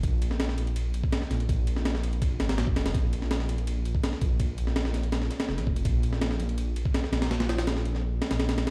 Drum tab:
RD |x-x-x-xxx-x-x-xx|x-x-x-xxx-xxx-xx|x-x-x-xxx-x-x-x-|x-x-x-xxx-xx-x-x|
SD |---ooo------ooo-|---ooo----ooo-oo|---ooo------oo--|---oooo-oooooo--|
BD |o----------o----|o-------o----o--|o----------o--o-|o-------------o-|

RD |x-x-x-xxx-x-x-xx|xxxxx-x---xxxxxx|
SD |---ooo------oooo|oooooo-o--oooooo|
BD |o----------o----|----------------|